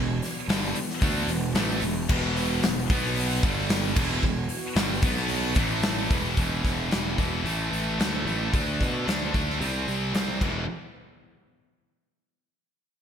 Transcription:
Already playing: picked electric bass E1, distorted electric guitar E2 B2, analog synth pad E3 B3 F#4
0.22 snare, open hi-hat
0.48 picked electric bass G1, distorted electric guitar G2 D3 G3, snare, open hi-hat
0.75 muted picked electric bass stroke, muted distorted electric guitar stroke, open hi-hat
0.90 snare
1.00 picked electric bass D2, distorted electric guitar D3 A3 D4, kick, open hi-hat
1.28 picked electric bass E1, distorted electric guitar E2 B2, open hi-hat
1.55 picked electric bass A1, distorted electric guitar A2 E3 A3, snare, open hi-hat
1.82 picked electric bass E1, distorted electric guitar E2 B2, open hi-hat
2.09 picked electric bass E1, distorted electric guitar E2 B2 E3, kick, crash
2.36 snare, open hi-hat
2.62 picked electric bass E1, distorted electric guitar E2 B2, snare, open hi-hat
2.90 picked electric bass B1, distorted electric guitar B2 F#3 B3, analog synth pad C#5, kick, open hi-hat
3.05 snare
3.16 open hi-hat
3.43 picked electric bass G1, distorted electric guitar G2 D3 G3, analog synth pad G3 D4 A4, kick, open hi-hat
3.69 snare, open hi-hat
3.96 picked electric bass E1, distorted electric guitar E2 B2 E3, kick, crash
4.01 analog synth pad E3 B3 F#4
4.22 picked electric bass E1, distorted electric guitar E2 B2, kick
4.49 open hi-hat
4.75 picked electric bass G1, distorted electric guitar G2 D3 G3, snare, open hi-hat
5.02 picked electric bass B1, distorted electric guitar B2 F#3 B3, analog synth pad C#5, kick, open hi-hat
5.17 snare
5.28 open hi-hat
5.55 picked electric bass A1, distorted electric guitar A2 E3 A3, analog synth pad A3 E4 B4, kick, open hi-hat
5.82 snare, open hi-hat
6.10 picked electric bass E1, distorted electric guitar E2 B2 E3, analog synth pad E3 B3 F#4, kick, open hi-hat
6.36 picked electric bass E1, distorted electric guitar E2 B2 E3, kick, open hi-hat
6.64 picked electric bass E1, kick, snare, open hi-hat
6.89 picked electric bass E1, distorted electric guitar E2 B2 E3, snare, open hi-hat
7.15 picked electric bass E1, distorted electric guitar E2 B2 E3, kick, open hi-hat
7.42 picked electric bass A1, distorted electric guitar A2 E3 A3, open hi-hat
7.71 picked electric bass A1, open hi-hat
7.97 picked electric bass D2, distorted electric guitar A2 E3 A3, snare, open hi-hat
8.25 picked electric bass A1, distorted electric guitar A2 E3 A3, open hi-hat
8.51 picked electric bass D2, distorted electric guitar D3 A3 D4, kick, open hi-hat
8.81 picked electric bass B2, kick, open hi-hat
9.05 picked electric bass D2, distorted electric guitar D3 A3 D4, snare, open hi-hat
9.31 picked electric bass D2, distorted electric guitar D3 A3 D4, kick, open hi-hat
9.36 distorted electric guitar D4
9.50 snare
9.59 picked electric bass C2, distorted electric guitar C3 G3 C4, open hi-hat
9.88 picked electric bass C2, open hi-hat
10.14 picked electric bass C2, distorted electric guitar C3 G3 C4, snare, open hi-hat
10.41 picked electric bass E1, distorted electric guitar E2 B2 E3, kick, crash

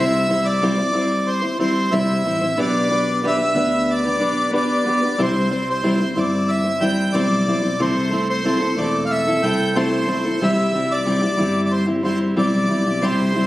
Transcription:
Already playing: fingered electric bass C2, steel-string acoustic guitar C3 G3 C4 E4 C5, accordion E5
0.28 steel-string acoustic guitar G3 C4 E4 C5
0.45 accordion D5
0.62 steel-string acoustic guitar C3 G3 C4 E4 C5
0.77 steel-string acoustic guitar C4 E4 C5
0.93 fingered electric bass G1, steel-string acoustic guitar G3 C4 E4 C5
1.27 accordion C5
1.42 steel-string acoustic guitar C4 E4 C5
1.59 steel-string acoustic guitar G3 C4 E4 C5, accordion C5
1.91 fingered electric bass C2, steel-string acoustic guitar C3 G3 C4 E4 C5, accordion E5
2.24 fingered electric bass A1, steel-string acoustic guitar G3 C4 E4 C5
2.41 steel-string acoustic guitar C4 E4 C5
2.57 fingered electric bass B1, steel-string acoustic guitar B3 D4 G4 B4, accordion D5
2.90 steel-string acoustic guitar B3 D4 G4 B4
3.23 steel-string acoustic guitar B3 D4 G4 B4, accordion E5
3.38 steel-string acoustic guitar D4 G4 B4
3.54 fingered electric bass D2, steel-string acoustic guitar B3 D4 G4 B4
3.91 accordion D5
4.04 steel-string acoustic guitar D4 G4 B4
4.19 fingered electric bass B1, steel-string acoustic guitar B3 D4 G4 B4
4.51 steel-string acoustic guitar B3 D4 G4 B4
4.55 accordion D5
4.85 steel-string acoustic guitar B3 D4 G4 B4
5.02 steel-string acoustic guitar D4 G4 B4
5.18 fingered electric bass C2, steel-string acoustic guitar C3 G3 C4 E4 C5
5.23 accordion C5
5.50 steel-string acoustic guitar G3 C4 E4 C5
5.70 accordion C5
5.83 steel-string acoustic guitar C3 G3 C4 E4 C5
6.00 steel-string acoustic guitar C4 E4 C5
6.15 fingered electric bass G1, steel-string acoustic guitar G3 C4 E4 C5, accordion D5
6.49 accordion E5
6.64 steel-string acoustic guitar C4 E4 C5
6.80 steel-string acoustic guitar G3 C4 E4 C5, accordion G5
7.13 fingered electric bass B1, steel-string acoustic guitar G3 C4 E4 C5, accordion D5
7.47 fingered electric bass B1, steel-string acoustic guitar G3 C4 E4 C5
7.63 steel-string acoustic guitar C4 E4 C5
7.79 fingered electric bass C2, steel-string acoustic guitar C3 A3 C4 E4 A4, accordion C5
8.11 steel-string acoustic guitar A3 C4 E4 A4
8.30 accordion C5
8.44 steel-string acoustic guitar C3 A3 C4 E4 A4
8.60 steel-string acoustic guitar C4 E4 A4
8.76 fingered electric bass E1, steel-string acoustic guitar A3 C4 E4 A4, accordion D5
9.05 accordion F5
9.11 accordion E5
9.27 steel-string acoustic guitar C4 E4 A4
9.42 fingered electric bass C2, steel-string acoustic guitar A3 C4 E4 A4, accordion G5
9.76 steel-string acoustic guitar C3 A3 C4 E4 A4, accordion C5
10.07 steel-string acoustic guitar A3 C4 E4 A4
10.25 steel-string acoustic guitar C4 E4 A4
10.41 fingered electric bass C2, steel-string acoustic guitar C3 G3 C4 E4 G4, accordion E5
10.73 steel-string acoustic guitar G3 C4 E4 G4
10.91 accordion D5
11.05 steel-string acoustic guitar C3 G3 C4 E4 G4
11.21 steel-string acoustic guitar C4 E4 G4
11.37 fingered electric bass G1, steel-string acoustic guitar G3 C4 E4 G4
11.65 accordion D5
11.72 accordion C5
11.86 steel-string acoustic guitar C4 E4 G4
12.03 steel-string acoustic guitar G3 C4 E4 G4, accordion C5
12.36 fingered electric bass B1, steel-string acoustic guitar G3 C4 E4 G4, accordion D5
12.68 fingered electric bass B1, steel-string acoustic guitar G3 C4 E4 G4
12.85 steel-string acoustic guitar C4 E4 G4
13.02 fingered electric bass C2, steel-string acoustic guitar C3 G3 C4 E4 G4, accordion C5
13.34 steel-string acoustic guitar G3 C4 E4 G4

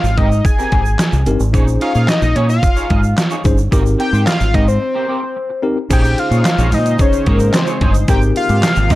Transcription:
Already playing: analog synth lead F5
0.04 fingered electric bass G#1, muted clean electric guitar stroke, shaker
0.17 fingered electric bass G#2, clean electric guitar C4 G4 A#4, analog synth lead D#5, kick, closed hi-hat
0.31 muted clean electric guitar stroke, shaker
0.45 analog synth lead G#5, muted clean electric guitar stroke, kick, closed hi-hat, shaker
0.58 clean electric guitar C4 G4 A#4, shaker
0.72 fingered electric bass G#1, clean electric guitar C4 G4 A#4, kick, closed hi-hat
0.85 muted clean electric guitar stroke, shaker
0.99 muted clean electric guitar stroke, snare, clap, closed hi-hat, shaker
1.13 fingered electric bass C2, muted clean electric guitar stroke, shaker
1.26 fingered electric bass G1, tine electric piano C4 D#4 G4 A#4, closed hi-hat, shaker
1.40 fingered electric bass G#1, muted clean electric guitar stroke, shaker
1.53 fingered electric bass A#1, tine electric piano C#4 D#4 G#4 C5, clean electric guitar D#4 G#4 C#5, kick, closed hi-hat, shaker
1.68 muted clean electric guitar stroke, shaker
1.81 clean electric guitar D#4 G#4 C#5, analog synth lead F5, closed hi-hat
1.95 fingered electric bass A#2, clean electric guitar D#4 G#4 C#5, shaker
2.08 analog synth lead D#5, muted clean electric guitar stroke, snare, clap, closed hi-hat, shaker
2.22 fingered electric bass A#1, muted clean electric guitar stroke, shaker
2.35 fingered electric bass A#2, clean electric guitar D#4 G#4 C#5, analog synth lead C#5, closed hi-hat
2.49 analog synth lead F5, muted clean electric guitar stroke, shaker
2.63 muted clean electric guitar stroke, kick, closed hi-hat, shaker
2.76 clean electric guitar D#4 G#4 C#5, shaker
2.90 fingered electric bass G#2, clean electric guitar D#4 G#4 D#5, kick, closed hi-hat
3.03 muted clean electric guitar stroke, shaker
3.17 muted clean electric guitar stroke, snare, clap, closed hi-hat, shaker
3.30 clean electric guitar D#4 G#4 C#5, shaker
3.44 fingered electric bass G1, tine electric piano C#4 D#4 G#4 C5, muted clean electric guitar stroke, kick, closed hi-hat, shaker
3.58 muted clean electric guitar stroke, shaker
3.71 fingered electric bass G#1, clean electric guitar C4 G4 A#4, tine electric piano C4 D#4 G4 A#4, kick, closed hi-hat, shaker
3.85 muted clean electric guitar stroke, shaker
3.98 clean electric guitar C4 G4 A#4, analog synth lead G5, closed hi-hat
4.12 fingered electric bass G#2, clean electric guitar C4 G4 C5, shaker
4.27 analog synth lead F5, snare, clap, closed hi-hat, shaker
4.40 fingered electric bass G#1, muted clean electric guitar stroke, shaker
4.53 fingered electric bass G#2, clean electric guitar C4 G4 A#4, analog synth lead D#5, kick, closed hi-hat
4.67 analog synth lead C5, muted clean electric guitar stroke, shaker
4.81 muted clean electric guitar stroke
4.94 clean electric guitar C4 G4 A#4
5.08 clean electric guitar C4 G4 A#4
5.22 muted clean electric guitar stroke
5.36 muted clean electric guitar stroke
5.49 muted clean electric guitar stroke
5.62 tine electric piano C4 D#4 G4 A#4
5.77 muted clean electric guitar stroke
5.89 fingered electric bass A#1, analog synth pad C#3 G#3 D#4 C5, tine electric piano C#4 D#4 G#4 C5, clean electric guitar D#4 G#4 C#5, analog synth lead G5, kick, closed hi-hat, crash, shaker
6.04 muted clean electric guitar stroke, shaker
6.18 analog synth lead F5, muted clean electric guitar stroke, closed hi-hat
6.31 fingered electric bass A#2, clean electric guitar D#4 G#4 C#5, closed hi-hat, shaker
6.45 muted clean electric guitar stroke, snare, clap, closed hi-hat, shaker
6.58 fingered electric bass A#1, clean electric guitar D#4 G#4 C#5, closed hi-hat, shaker
6.72 fingered electric bass A#2, analog synth lead D#5, muted clean electric guitar stroke, open hi-hat, shaker
6.86 muted clean electric guitar stroke, closed hi-hat, shaker
6.99 tine electric piano C#4 D#4 G#4 C5, analog synth lead C#5, kick, closed hi-hat, shaker
7.13 muted clean electric guitar stroke, closed hi-hat, shaker
7.26 fingered electric bass G#2, clean electric guitar D#4 G#4 C#5, analog synth lead A#4, kick, closed hi-hat
7.39 muted clean electric guitar stroke, closed hi-hat, shaker
7.53 analog synth lead C5, muted clean electric guitar stroke, snare, clap, closed hi-hat, shaker
7.67 clean electric guitar D#4 G#4 C#5, closed hi-hat, shaker
7.81 fingered electric bass G1, clean electric guitar D#4 G#4 C#5, kick, closed hi-hat
7.94 muted clean electric guitar stroke, closed hi-hat, shaker
8.08 fingered electric bass G#1, analog synth pad C3 A#3 G4, clean electric guitar C4 G4 A#4, tine electric piano C4 D#4 G4 A#4, analog synth lead G5, kick, closed hi-hat, shaker
8.22 muted clean electric guitar stroke, shaker
8.35 analog synth lead F5, muted clean electric guitar stroke, closed hi-hat
8.49 fingered electric bass G#2, clean electric guitar C4 G4 C5, closed hi-hat, shaker
8.62 muted clean electric guitar stroke, snare, clap, closed hi-hat, shaker
8.76 fingered electric bass G#1, muted clean electric guitar stroke, closed hi-hat, shaker
8.90 fingered electric bass G#2, clean electric guitar C4 G4 A#4, analog synth lead D#5, kick, open hi-hat, shaker

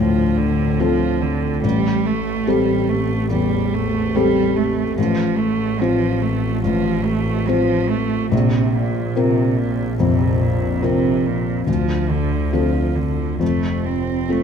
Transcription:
Already playing: double bass D2, felt piano D2 A2 C4 F4 A4
0.00 cello F3
0.37 cello D3
0.80 cello F3, felt piano C4 F4 A4
1.21 cello D3
1.64 felt piano A1, double bass A1, cello G3
2.06 cello A3
2.47 cello G3, felt piano C4 G4 A4
2.89 cello A3
3.31 felt piano E2, cello G3
3.74 cello A3
4.15 cello G3, felt piano C4 G4 A4
4.56 cello A3
4.98 felt piano A1, double bass A1, cello F3
5.38 cello A3
5.80 cello F3, felt piano C4 F4 C5
6.22 cello A3
6.64 felt piano A1, cello F3
7.05 cello A3
7.48 cello F3, felt piano C4 F4 C5
7.90 cello A3
8.31 felt piano A#1, double bass A#1, cello C3
8.75 cello A#2
9.16 cello C3, felt piano C4 F4 A#4
9.57 cello A#2
10.00 felt piano F2, cello C3
10.42 cello A#2
10.82 cello C3, felt piano C4 F4 A#4
11.27 cello A#2
11.67 felt piano D2, double bass D2, cello F3
12.11 cello D3
12.53 cello F3, felt piano C4 F4 A4
12.96 cello D3
13.40 double bass F1, felt piano F2, cello A3
13.86 cello C4
14.29 cello A3, felt piano C4 F4 A4

